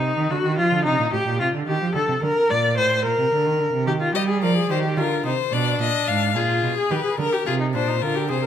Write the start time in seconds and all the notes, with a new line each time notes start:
Already playing: C3 D#4
0.17 D#3
0.30 D3 F#4
0.44 D#3
0.57 F3 F4
0.72 D3
0.85 C3 D#4
0.99 A#2
1.13 A2 G4
1.26 A#2
1.40 C3 F4
1.53 D3
1.67 D#3 G4
1.81 F3
1.95 D3 A4
2.08 C3
2.22 D3 A#4
2.50 A#2 D5
2.77 A2 C5
3.04 A#2 A#4
3.18 C3
3.32 D3
3.46 D#3
3.60 D3
3.73 C3
3.86 D#3 G4
4.01 F4
4.14 G3 G4 D#5
4.29 G#4
4.42 F3 A#4 D5
4.56 G#4
4.70 D#3 G4 C5
4.97 D3 F4 A#4
5.25 C3 D#4 C5
5.52 B2 D4 D5
5.80 A#2 D#5
6.07 G#2 F5
6.35 A#2 F4 G#4
6.63 B2
6.77 G#4
6.91 D#3 G4 B4
7.05 G#4
7.18 D3 A#4
7.32 G4
7.46 C3 F4 G#4
7.60 D#4
7.74 A#2 D4 C5
7.88 D#4
8.01 D3 F4 A#4
8.15 G4
8.29 C3 G#4 C5
8.43 A#4